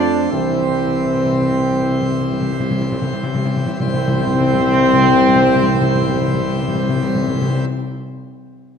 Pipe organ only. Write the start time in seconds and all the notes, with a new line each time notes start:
Already playing: F3 A3 C4 C5
0.30 E3 G3
3.81 E3 G3 C4 C5